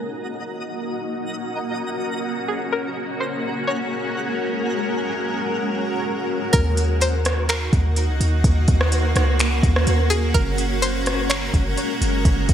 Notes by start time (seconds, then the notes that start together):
Already playing: A#3 D#4 F#4 A#4 D#5 A#5
0.82 C#4
2.48 G#4
2.72 G#3 G#4 A#4 F#5
3.20 C5
3.67 C#5
6.53 D#2 A#3 D#4 F#4 A#4, kick, closed hi-hat
6.77 closed hi-hat
7.01 C5, closed hi-hat
7.25 cross-stick, closed hi-hat
7.49 A#4, finger snap, closed hi-hat
7.73 D#2, kick, closed hi-hat
7.96 closed hi-hat
8.09 C#2
8.20 D#2, closed hi-hat
8.44 D#2 C#4, kick, closed hi-hat
8.68 D#2, kick, closed hi-hat
8.81 cross-stick
8.92 closed hi-hat
9.16 C#2, cross-stick, closed hi-hat
9.39 finger snap, closed hi-hat
9.63 D#2, kick, closed hi-hat
9.76 cross-stick
9.87 D#2, closed hi-hat
10.10 G#4, closed hi-hat
10.34 F#1 G#3 A#4, kick, closed hi-hat
10.58 closed hi-hat
10.82 C5, closed hi-hat
11.06 cross-stick, closed hi-hat
11.30 C#5, finger snap, closed hi-hat
11.54 F#1, kick, closed hi-hat
11.77 closed hi-hat
12.01 F#1, closed hi-hat
12.25 F#1, kick, closed hi-hat
12.49 F#1, kick, closed hi-hat